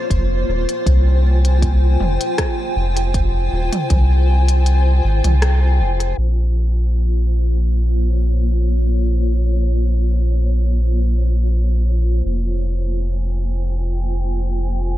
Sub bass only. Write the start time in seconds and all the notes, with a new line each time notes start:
0.11 F1
0.48 D#1
0.86 C2
2.00 F1
2.76 F1
3.52 D#1
3.90 C2
5.04 G#1
5.24 C2
5.80 F1
6.17 A#1
12.25 F1